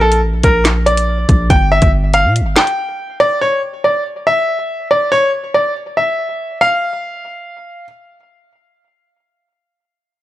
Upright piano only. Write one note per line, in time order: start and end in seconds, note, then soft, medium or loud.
0.01 0.19 A4 medium
0.44 0.62 A#4 medium
0.86 1.46 D5 medium
1.50 1.68 G5 medium
1.72 1.90 E5 medium
2.14 2.32 F5 medium
2.57 3.17 G5 medium
3.20 3.38 D5 medium
3.41 3.60 C#5 medium
3.84 4.02 D5 medium
4.27 4.87 E5 medium
4.91 5.09 D5 medium
5.12 5.30 C#5 medium
5.54 5.72 D5 medium
5.97 6.57 E5 medium
6.61 7.85 F5 medium